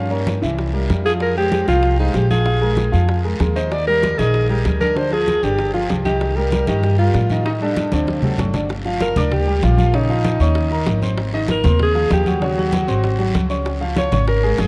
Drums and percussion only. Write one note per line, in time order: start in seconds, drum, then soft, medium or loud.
0.11 high conga soft
0.27 high bongo medium
0.27 high conga loud
0.27 short guiro medium
0.42 high bongo soft
0.42 high conga soft
0.42 short guiro medium
0.58 high bongo medium
0.58 high conga soft
0.58 long guiro medium
0.74 high bongo soft
0.74 high conga soft
0.90 high bongo medium
0.90 low bongo medium
0.90 high conga medium
0.90 short guiro medium
1.05 high bongo soft
1.05 short guiro medium
1.20 high bongo medium
1.20 high conga soft
1.20 long guiro medium
1.36 high bongo soft
1.36 high conga soft
1.52 high bongo medium
1.52 high conga medium
1.52 short guiro medium
1.67 high bongo soft
1.67 high conga medium
1.67 short guiro medium
1.83 high bongo medium
1.83 high conga soft
1.83 long guiro medium
1.98 high bongo soft
1.98 high conga soft
2.14 high bongo medium
2.14 low bongo medium
2.14 high conga medium
2.14 short guiro medium
2.31 high conga medium
2.31 short guiro medium
2.46 high bongo medium
2.46 high conga soft
2.46 long guiro medium
2.62 high conga soft
2.77 high bongo medium
2.77 high conga medium
2.77 short guiro medium
2.93 high bongo soft
2.93 high conga soft
2.93 short guiro medium
3.09 high bongo medium
3.09 high conga soft
3.09 long guiro medium
3.24 high bongo soft
3.24 high conga soft
3.40 high bongo medium
3.40 low bongo medium
3.40 high conga medium
3.40 short guiro medium
3.56 high bongo soft
3.56 short guiro medium
3.72 high bongo medium
3.72 high conga soft
3.72 long guiro medium
3.87 high bongo soft
3.87 high conga soft
4.03 high bongo medium
4.03 high conga loud
4.03 short guiro medium
4.19 high bongo soft
4.19 high conga medium
4.19 short guiro medium
4.34 high bongo medium
4.34 high conga soft
4.34 long guiro medium
4.50 high bongo soft
4.50 high conga soft
4.65 high bongo medium
4.65 low bongo medium
4.65 high conga medium
4.65 short guiro medium
4.81 high conga medium
4.81 short guiro medium
4.97 high bongo medium
4.97 high conga soft
4.97 long guiro medium
5.13 high conga soft
5.28 high bongo medium
5.28 high conga medium
5.28 short guiro medium
5.43 high bongo soft
5.43 high conga soft
5.43 short guiro medium
5.58 high bongo medium
5.58 high conga soft
5.58 long guiro medium
5.74 high bongo soft
5.74 high conga soft
5.89 high bongo medium
5.89 low bongo medium
5.89 high conga medium
5.89 short guiro medium
6.05 high bongo soft
6.05 high conga medium
6.05 short guiro medium
6.21 high bongo medium
6.21 high conga soft
6.21 long guiro medium
6.37 high bongo soft
6.37 high conga soft
6.52 high bongo medium
6.52 high conga medium
6.52 short guiro medium
6.67 high bongo soft
6.67 high conga medium
6.67 short guiro medium
6.83 high bongo medium
6.83 high conga soft
6.83 long guiro medium
6.99 high bongo soft
6.99 high conga soft
7.14 high bongo medium
7.14 low bongo medium
7.14 high conga medium
7.14 short guiro medium
7.30 high conga medium
7.30 short guiro medium
7.45 high bongo medium
7.45 high conga soft
7.45 long guiro medium
7.61 high conga soft
7.76 high bongo medium
7.76 high conga medium
7.76 short guiro medium
7.92 high bongo soft
7.92 high conga medium
7.92 short guiro medium
8.07 high bongo medium
8.07 high conga medium
8.07 long guiro medium
8.22 high bongo soft
8.22 low conga medium
8.38 high bongo medium
8.38 low bongo medium
8.38 low conga medium
8.38 short guiro medium
8.54 high bongo soft
8.54 low conga medium
8.54 short guiro medium
8.69 high bongo medium
8.69 high conga soft
8.69 long guiro medium
8.86 high bongo soft
8.86 high conga soft
9.00 high bongo medium
9.00 high conga medium
9.00 short guiro medium
9.16 high bongo soft
9.16 high conga medium
9.16 low conga medium
9.16 short guiro medium
9.32 high bongo medium
9.32 high conga soft
9.32 low conga medium
9.32 long guiro medium
9.47 high bongo soft
9.47 high conga soft
9.63 high bongo medium
9.63 low bongo medium
9.63 high conga medium
9.63 short guiro medium
9.78 high conga medium
9.78 short guiro medium
9.94 high bongo medium
9.94 high conga soft
9.94 long guiro medium
10.10 high conga soft
10.24 high bongo medium
10.24 high conga loud
10.24 short guiro medium
10.40 high bongo soft
10.40 high conga soft
10.40 short guiro medium
10.55 high bongo medium
10.55 high conga soft
10.55 long guiro medium
10.71 high bongo soft
10.71 high conga soft
10.86 high bongo medium
10.86 low bongo medium
10.86 high conga medium
10.86 short guiro medium
11.02 high bongo soft
11.02 high conga medium
11.02 short guiro medium
11.18 high bongo medium
11.18 high conga soft
11.18 long guiro medium
11.33 high bongo soft
11.33 high conga soft
11.48 high bongo medium
11.48 high conga loud
11.48 short guiro medium
11.64 high bongo soft
11.64 high conga loud
11.64 low conga medium
11.64 short guiro medium
11.80 high bongo medium
11.80 high conga soft
11.80 low conga medium
11.80 long guiro medium
11.95 high bongo soft
11.95 high conga soft
12.11 high bongo medium
12.11 low bongo medium
12.11 high conga medium
12.11 short guiro medium
12.26 high conga medium
12.26 short guiro medium
12.42 high bongo medium
12.42 high conga soft
12.42 long guiro medium
12.58 high conga soft
12.72 high bongo medium
12.72 high conga loud
12.72 short guiro medium
12.88 high bongo soft
12.88 high conga soft
12.88 short guiro medium
13.04 high bongo medium
13.04 high conga soft
13.04 long guiro medium
13.19 high bongo soft
13.19 high conga soft
13.34 high bongo medium
13.34 low bongo medium
13.34 high conga medium
13.34 short guiro medium
13.50 high bongo soft
13.50 short guiro medium
13.65 high bongo medium
13.65 high conga soft
13.65 long guiro medium
13.81 high bongo soft
13.81 high conga soft
13.96 high bongo medium
13.96 high conga loud
13.96 short guiro medium
14.12 high bongo soft
14.12 high conga medium
14.12 low conga medium
14.12 short guiro medium
14.27 high bongo medium
14.27 high conga soft
14.27 long guiro medium
14.43 high bongo soft
14.43 high conga soft
14.58 high bongo medium
14.58 low bongo medium
14.58 high conga medium
14.58 short guiro medium